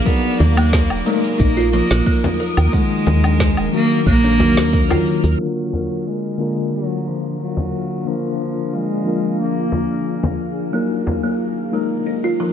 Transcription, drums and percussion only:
0.06 kick loud
0.06 open hi-hat soft
0.06 shaker soft
0.40 frame drum medium
0.40 shaker medium
0.57 open hi-hat medium
0.57 low woodblock medium
0.57 shaker soft
0.73 kick loud
0.73 snare medium
0.73 open hi-hat soft
0.73 shaker soft
0.90 low woodblock medium
1.07 shaker medium
1.24 open hi-hat medium
1.24 shaker soft
1.40 kick loud
1.40 open hi-hat soft
1.40 shaker soft
1.73 shaker medium
1.91 snare medium
1.91 open hi-hat medium
1.91 shaker soft
2.06 kick loud
2.06 open hi-hat soft
2.06 shaker soft
2.24 frame drum loud
2.40 shaker medium
2.57 open hi-hat medium
2.57 low woodblock medium
2.57 shaker soft
2.73 kick loud
2.73 open hi-hat soft
2.73 shaker soft
3.07 frame drum medium
3.07 shaker medium
3.24 open hi-hat medium
3.24 low woodblock medium
3.24 shaker soft
3.40 kick loud
3.40 snare medium
3.40 open hi-hat soft
3.40 shaker soft
3.57 low woodblock medium
3.73 shaker medium
3.91 open hi-hat medium
3.91 shaker soft
4.07 kick loud
4.07 open hi-hat soft
4.07 shaker soft
4.40 frame drum medium
4.40 shaker medium
4.57 snare medium
4.57 open hi-hat medium
4.57 shaker soft
4.73 kick loud
4.73 open hi-hat medium
4.73 shaker soft
4.91 frame drum medium
4.91 low woodblock medium
5.06 shaker medium
5.24 open hi-hat medium
5.24 shaker soft
5.73 frame drum medium
7.57 frame drum medium
9.72 frame drum medium
10.23 frame drum medium
11.07 frame drum medium

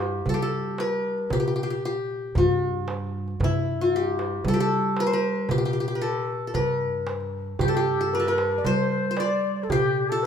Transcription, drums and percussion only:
0.00 darbuka tek medium
0.26 darbuka dum medium
0.78 darbuka tek medium
1.18 darbuka ka soft
1.30 darbuka dum medium
1.83 darbuka ka soft
2.35 darbuka dum medium
2.88 darbuka tek medium
3.28 darbuka ka soft
3.40 darbuka dum medium
3.93 darbuka ka soft
4.19 darbuka tek medium
4.44 darbuka dum medium
4.97 darbuka tek medium
5.36 darbuka ka soft
5.49 darbuka dum medium
5.62 darbuka ka soft
5.89 darbuka ka soft
6.54 darbuka dum medium
6.81 darbuka ka soft
7.07 darbuka tek medium
7.20 darbuka ka soft
7.59 darbuka dum medium
8.12 darbuka ka soft
8.38 darbuka tek medium
8.64 darbuka dum medium
9.17 darbuka tek medium
9.56 darbuka ka soft
9.70 darbuka dum medium
10.23 darbuka ka soft

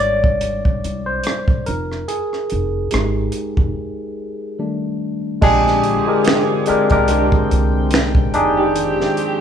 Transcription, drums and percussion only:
0.24 kick medium
0.41 closed hi-hat medium
0.65 kick medium
0.84 closed hi-hat medium
1.24 cross-stick loud
1.24 closed hi-hat medium
1.48 kick medium
1.66 closed hi-hat medium
1.92 cross-stick soft
2.09 closed hi-hat medium
2.33 cross-stick soft
2.50 closed hi-hat medium
2.91 cross-stick loud
2.91 closed hi-hat medium
3.32 closed hi-hat medium
3.57 kick medium
5.42 kick loud
5.42 crash medium
5.67 snare soft
5.84 closed hi-hat medium
6.25 finger snap loud
6.25 snare loud
6.25 closed hi-hat medium
6.66 closed hi-hat medium
6.90 kick medium
6.90 closed hi-hat medium
7.08 closed hi-hat loud
7.32 kick loud
7.51 closed hi-hat medium
7.91 finger snap medium
7.91 snare loud
7.91 closed hi-hat medium
8.15 kick medium
8.34 closed hi-hat medium
8.76 closed hi-hat medium
9.01 snare soft
9.17 closed hi-hat medium

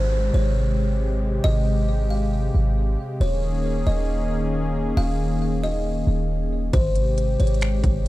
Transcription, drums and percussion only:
6.73 kick loud
6.73 closed hi-hat medium
6.95 closed hi-hat medium
7.18 closed hi-hat medium
7.40 closed hi-hat medium
7.47 closed hi-hat soft
7.54 closed hi-hat soft
7.61 finger snap loud
7.61 closed hi-hat medium
7.84 kick medium
7.84 closed hi-hat medium

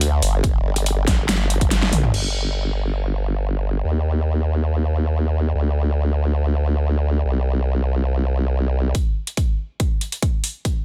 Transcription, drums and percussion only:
0.01 closed hi-hat medium
0.22 open hi-hat medium
0.44 kick loud
0.44 closed hi-hat medium
0.76 closed hi-hat medium
0.86 closed hi-hat medium
1.08 kick medium
1.08 snare medium
1.08 open hi-hat medium
1.29 snare loud
1.29 closed hi-hat medium
1.50 closed hi-hat medium
1.61 kick medium
1.61 closed hi-hat medium
1.71 snare medium
1.71 closed hi-hat medium
1.83 snare medium
1.93 open hi-hat loud
1.93 mid tom medium
2.04 mid tom medium
2.14 crash medium
8.95 kick medium
8.95 closed hi-hat medium
9.27 closed hi-hat soft
9.37 kick medium
9.37 closed hi-hat medium
9.80 kick medium
9.80 closed hi-hat medium
10.01 closed hi-hat soft
10.12 closed hi-hat soft
10.22 kick medium
10.22 closed hi-hat medium
10.44 open hi-hat medium
10.65 kick medium
10.65 closed hi-hat medium

